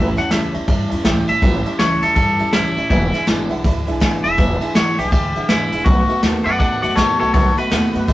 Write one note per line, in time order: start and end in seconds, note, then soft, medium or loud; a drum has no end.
0.00 0.17 A1 loud
0.00 0.18 A2 medium
0.00 0.18 E3 medium
0.00 0.18 G3 medium
0.00 0.17 C#4 medium
0.00 0.16 E4 medium
0.00 0.17 E5 medium
0.16 0.31 G3 soft
0.16 0.32 C#4 medium
0.16 0.31 E4 medium
0.16 0.25 C#5 medium
0.16 0.26 E5 medium
0.16 0.31 F#5 loud
0.16 0.26 A5 loud
0.16 muted upright bass stroke medium
0.16 snare soft
0.16 ride medium
0.29 0.54 C#2 medium
0.29 0.55 A2 medium
0.29 0.55 E3 medium
0.29 0.55 G3 medium
0.29 0.54 C#4 medium
0.29 0.53 E4 medium
0.29 0.44 C#5 medium
0.29 0.45 E5 medium
0.29 0.54 E5 loud
0.29 snare loud
0.29 ride medium
0.53 0.68 E2 medium
0.53 0.67 G3 soft
0.53 0.68 C#4 medium
0.53 0.68 E4 medium
0.53 0.62 C#5 medium
0.53 0.63 E5 medium
0.53 0.63 A5 medium
0.53 ride medium
0.66 0.91 G2 loud
0.66 0.91 E3 medium
0.66 0.92 G3 medium
0.66 0.91 C#4 medium
0.66 0.90 E4 medium
0.66 0.81 C#5 medium
0.66 0.82 E5 medium
0.66 0.82 A5 medium
0.66 kick loud
0.66 ride medium
0.88 1.05 E2 medium
0.88 1.05 C#4 medium
0.88 1.05 E4 medium
0.88 0.98 C#5 medium
0.88 0.99 E5 medium
0.88 0.99 A5 medium
0.88 ride medium
0.93 1.04 G3 medium
1.03 1.28 C#2 medium
1.03 1.28 A2 medium
1.03 1.29 E3 medium
1.03 1.28 G3 loud
1.03 1.27 C#4 medium
1.03 1.26 E4 medium
1.03 1.18 C#5 loud
1.03 1.19 E5 medium
1.03 1.19 G5 loud
1.03 kick medium
1.03 snare loud
1.03 ride medium
1.27 1.42 A1 medium
1.27 1.41 G3 soft
1.27 1.41 C#4 medium
1.27 1.42 E4 medium
1.27 1.36 C#5 medium
1.27 1.36 E5 medium
1.27 1.78 E5 loud
1.27 1.37 A5 medium
1.27 ride medium
1.42 1.64 A1 loud
1.42 1.65 A2 medium
1.42 1.66 E3 medium
1.42 1.65 G3 medium
1.42 1.65 C#4 medium
1.42 1.64 E4 medium
1.42 1.56 C#5 medium
1.42 1.57 E5 medium
1.42 1.57 A5 loud
1.42 kick loud
1.42 ride medium
1.65 1.79 G3 soft
1.65 1.80 C#4 soft
1.65 1.79 E4 medium
1.65 1.74 C#5 medium
1.65 1.74 E5 medium
1.65 1.74 A5 medium
1.65 muted upright bass stroke medium
1.65 ride medium
1.79 2.02 C#2 loud
1.79 2.03 A2 medium
1.79 2.03 E3 medium
1.79 2.03 G3 medium
1.79 2.03 C#4 medium
1.79 2.01 E4 medium
1.79 2.02 C#5 medium
1.79 1.93 C#5 medium
1.79 1.93 E5 medium
1.79 1.94 A5 medium
1.79 snare loud
1.79 ride medium
2.02 2.15 E2 medium
2.02 2.16 G3 soft
2.02 2.16 C#4 soft
2.02 2.16 E4 medium
2.02 2.14 A4 loud
2.02 2.11 C#5 medium
2.02 2.11 E5 medium
2.02 2.11 A5 medium
2.02 ride medium
2.15 2.39 G2 loud
2.15 2.40 E3 medium
2.15 2.40 G3 medium
2.15 2.39 C#4 medium
2.15 2.38 E4 medium
2.15 2.52 A4 medium
2.15 2.30 C#5 medium
2.15 2.30 E5 medium
2.15 2.31 A5 medium
2.15 kick loud
2.15 ride loud
2.39 2.53 E2 loud
2.39 2.53 G3 medium
2.39 2.53 C#4 soft
2.39 2.53 E4 medium
2.39 2.48 C#5 medium
2.39 2.48 E5 medium
2.39 2.48 A5 medium
2.39 ride medium
2.53 2.76 C#2 medium
2.53 2.77 A2 medium
2.53 2.77 E3 medium
2.53 2.77 G3 medium
2.53 2.76 C#4 medium
2.53 2.88 E4 loud
2.53 2.75 E4 medium
2.53 2.67 C#5 loud
2.53 2.68 E5 medium
2.53 2.68 A5 loud
2.53 snare loud
2.53 ride medium
2.77 2.90 A1 medium
2.77 2.91 G3 soft
2.77 2.91 C#4 medium
2.77 2.90 E4 medium
2.77 2.85 C#5 medium
2.77 2.85 E5 medium
2.77 2.86 A5 medium
2.77 ride medium
2.89 3.13 E1 loud
2.89 3.14 E2 medium
2.89 3.14 B2 medium
2.89 3.14 E3 medium
2.89 3.13 G#3 medium
2.89 3.13 D4 medium
2.89 3.26 E4 loud
2.89 3.12 E4 medium
2.89 3.04 B4 medium
2.89 3.04 E5 medium
2.89 3.04 G#5 loud
2.89 kick loud
2.89 ride medium
3.13 3.26 E3 medium
3.13 3.26 G#3 medium
3.13 3.26 D4 soft
3.13 3.26 E4 medium
3.13 3.21 B4 medium
3.13 3.22 E5 medium
3.13 3.22 G#5 medium
3.13 muted upright bass stroke medium
3.13 snare soft
3.13 ride medium
3.26 3.50 G#1 loud
3.26 3.50 E2 medium
3.26 3.50 B2 medium
3.26 3.50 E3 loud
3.26 3.49 G#3 loud
3.26 3.49 D4 medium
3.26 3.48 E4 medium
3.26 3.41 B4 medium
3.26 3.42 E5 medium
3.26 3.42 G#5 medium
3.26 snare loud
3.26 ride medium
3.48 3.64 B1 medium
3.48 3.61 E3 medium
3.48 3.63 G#3 medium
3.48 3.63 D4 medium
3.48 3.64 E4 medium
3.48 3.58 B4 loud
3.48 3.58 E5 medium
3.48 3.59 F#5 loud
3.48 ride medium
3.63 3.87 D2 loud
3.63 3.87 E3 medium
3.63 3.87 G#3 medium
3.63 3.86 D4 medium
3.63 3.86 E4 medium
3.63 3.78 B4 loud
3.63 3.79 E5 medium
3.63 3.79 B5 loud
3.63 kick loud
3.63 ride medium
3.86 4.01 B1 loud
3.86 4.00 E3 medium
3.86 4.00 G#3 medium
3.86 4.00 D4 medium
3.86 4.00 E4 medium
3.86 3.95 B4 medium
3.86 3.96 E5 medium
3.86 3.96 G#5 medium
3.86 ride medium
4.00 4.24 G#1 medium
4.00 4.24 E2 medium
4.00 4.24 B2 medium
4.00 4.24 E3 medium
4.00 4.25 G#3 medium
4.00 4.24 D4 medium
4.00 4.23 E4 loud
4.00 4.15 B4 loud
4.00 4.15 E5 medium
4.00 4.16 G#5 loud
4.00 kick medium
4.00 snare loud
4.00 ride medium
4.24 4.38 E1 medium
4.24 4.37 E3 soft
4.24 4.38 G#3 medium
4.24 4.38 D4 medium
4.24 4.38 E4 medium
4.24 4.32 B4 medium
4.24 4.73 E5 loud
4.24 4.33 E5 medium
4.24 4.33 G#5 medium
4.24 ride medium
4.37 4.61 E1 loud
4.37 4.61 E2 medium
4.37 4.61 B2 medium
4.37 4.62 E3 medium
4.37 4.61 G#3 medium
4.37 4.60 D4 loud
4.37 4.60 E4 medium
4.37 4.52 B4 medium
4.37 4.52 E5 medium
4.37 4.53 G#5 loud
4.37 kick loud
4.37 ride medium
4.61 4.75 E3 soft
4.61 4.75 G#3 soft
4.61 4.75 D4 medium
4.61 4.75 E4 medium
4.61 4.69 B4 medium
4.61 4.70 E5 medium
4.61 4.70 G#5 loud
4.61 muted upright bass stroke medium
4.61 ride medium
4.75 4.98 G#1 loud
4.75 4.98 E2 medium
4.75 4.99 B2 loud
4.75 4.99 E3 medium
4.75 4.98 G#3 medium
4.75 4.98 D4 medium
4.75 4.97 E4 medium
4.75 4.98 C#5 loud
4.75 4.89 E5 medium
4.75 4.90 F#5 medium
4.75 snare loud
4.75 ride loud
4.98 5.12 B1 medium
4.98 5.10 E3 soft
4.98 5.12 G#3 soft
4.98 5.12 D4 soft
4.98 5.12 E4 medium
4.98 5.12 G4 loud
4.98 5.06 B4 medium
4.98 5.07 E5 medium
4.98 5.08 G#5 medium
4.98 ride medium
5.11 5.35 D2 loud
5.11 5.35 E3 medium
5.11 5.36 G#3 medium
5.11 5.35 D4 medium
5.11 5.34 E4 medium
5.11 5.48 G4 loud
5.11 5.26 B4 medium
5.11 5.26 E5 medium
5.11 5.26 G#5 medium
5.11 kick loud
5.11 ride medium
5.35 5.49 B1 medium
5.35 5.49 E3 soft
5.35 5.49 G#3 soft
5.35 5.49 D4 soft
5.35 5.49 E4 medium
5.35 5.44 B4 medium
5.35 5.44 E5 medium
5.35 5.45 F#5 medium
5.35 ride medium
5.48 5.71 G#1 medium
5.48 5.73 E2 medium
5.48 5.73 B2 medium
5.48 5.73 E3 medium
5.48 5.73 G#3 medium
5.48 5.72 D4 medium
5.48 5.85 E4 medium
5.48 5.71 E4 medium
5.48 5.63 B4 medium
5.48 5.63 E5 medium
5.48 5.63 G#5 loud
5.48 snare loud
5.48 ride medium
5.71 5.86 E1 medium
5.71 5.85 E3 medium
5.71 5.86 G#3 soft
5.71 5.86 D4 medium
5.71 5.86 E4 medium
5.71 5.80 B4 medium
5.71 5.80 E5 medium
5.71 5.81 G#5 medium
5.71 ride medium
5.84 6.07 B1 loud
5.84 6.09 B2 medium
5.84 6.09 D#3 medium
5.84 6.10 A3 medium
5.84 6.09 B3 loud
5.84 6.21 F#4 loud
5.84 6.08 F#4 medium
5.84 5.99 B4 medium
5.84 6.00 D#5 medium
5.84 6.00 F#5 loud
5.84 kick loud
5.84 ride medium
6.08 6.22 A3 soft
6.08 6.22 B3 medium
6.08 6.22 F#4 medium
6.08 6.17 B4 medium
6.08 6.17 D#5 medium
6.08 6.18 F#5 loud
6.08 muted upright bass stroke medium
6.08 ride medium
6.21 6.45 D#2 medium
6.21 6.46 B2 loud
6.21 6.46 D#3 medium
6.21 6.46 A3 loud
6.21 6.46 B3 medium
6.21 6.44 F#4 loud
6.21 6.36 B4 medium
6.21 6.37 D#5 medium
6.21 6.37 F#5 medium
6.21 snare loud
6.21 ride medium
6.44 6.59 F#2 medium
6.44 6.58 A3 soft
6.44 6.58 B3 medium
6.44 6.59 F#4 medium
6.44 6.54 B4 medium
6.44 6.58 D5 medium
6.44 6.54 D#5 medium
6.44 6.59 F#5 loud
6.44 6.55 F#5 medium
6.44 ride medium
6.58 6.82 A2 loud
6.58 6.83 D#3 medium
6.58 6.82 A3 medium
6.58 6.82 B3 medium
6.58 6.81 F#4 medium
6.58 6.74 B4 medium
6.58 6.81 D5 loud
6.58 6.74 D#5 medium
6.58 6.81 F#5 loud
6.58 kick loud
6.58 ride medium
6.82 6.97 F#2 loud
6.82 6.95 A3 soft
6.82 6.95 B3 medium
6.82 6.96 F#4 medium
6.82 6.92 B4 medium
6.82 6.96 D5 medium
6.82 6.92 D#5 medium
6.82 6.97 F#5 medium
6.82 6.92 F#5 medium
6.82 ride medium
6.96 7.20 D#2 medium
6.96 7.20 B2 medium
6.96 7.20 D#3 medium
6.96 7.20 A3 medium
6.96 7.19 B3 medium
6.96 7.18 F#4 medium
6.96 7.18 A4 medium
6.96 7.11 B4 loud
6.96 7.19 C#5 loud
6.96 7.11 D#5 medium
6.96 7.12 F#5 medium
6.96 kick medium
6.96 snare loud
6.96 ride medium
7.19 7.34 B1 medium
7.19 7.33 A3 medium
7.19 7.33 B3 medium
7.19 7.33 F#4 medium
7.19 7.32 A4 medium
7.19 7.29 B4 medium
7.19 7.33 C#5 medium
7.19 7.29 D#5 medium
7.19 7.29 F#5 medium
7.19 ride medium
7.33 7.56 B1 loud
7.33 7.57 B2 medium
7.33 7.57 D#3 medium
7.33 7.57 A3 medium
7.33 7.56 B3 medium
7.33 7.55 F#4 medium
7.33 7.56 A4 medium
7.33 7.48 B4 medium
7.33 7.57 C#5 medium
7.33 7.49 D#5 medium
7.33 7.49 F#5 loud
7.33 kick loud
7.33 ride medium
7.56 7.70 A3 medium
7.56 7.70 B3 medium
7.56 7.70 F#4 medium
7.56 7.66 B4 medium
7.56 8.13 B4 loud
7.56 7.67 D#5 medium
7.56 7.67 F#5 medium
7.56 muted upright bass stroke medium
7.56 ride medium
7.70 7.94 D#2 loud
7.70 7.94 B2 medium
7.70 7.95 D#3 medium
7.70 7.94 A3 loud
7.70 7.93 B3 loud
7.70 7.92 F#4 loud
7.70 7.85 B4 medium
7.70 7.85 D#5 medium
7.70 7.86 F#5 medium
7.70 snare loud
7.70 ride medium
7.93 8.08 F#2 medium
7.93 8.07 A3 soft
7.93 8.08 B3 medium
7.93 8.08 F#4 medium
7.93 8.03 B4 medium
7.93 8.03 D#5 medium
7.93 8.03 F#5 medium
7.93 ride medium
8.07 8.13 A2 loud
8.07 8.13 D#3 medium
8.07 8.13 A3 medium
8.07 8.13 B3 medium
8.07 8.13 F#4 medium
8.07 8.13 B4 medium
8.07 8.13 D#5 medium
8.07 kick loud
8.07 ride loud